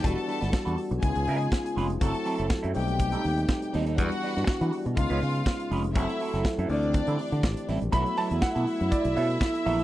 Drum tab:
HH |xxox-xoxxxox-xox|xxox-xoxxxox-xox|xxox-xoxxxox-xox|xxox-xoxxxox-xox|
SD |---oo-------o---|----o-------o---|---oo-------o---|---oo-------o---|
BD |o---o---o---o---|o---o---o---o---|o---o---o---o---|o---o---o---o---|

HH |xxox-xoxxxox-xox|
SD |----o-------o---|
BD |o---o---o---o---|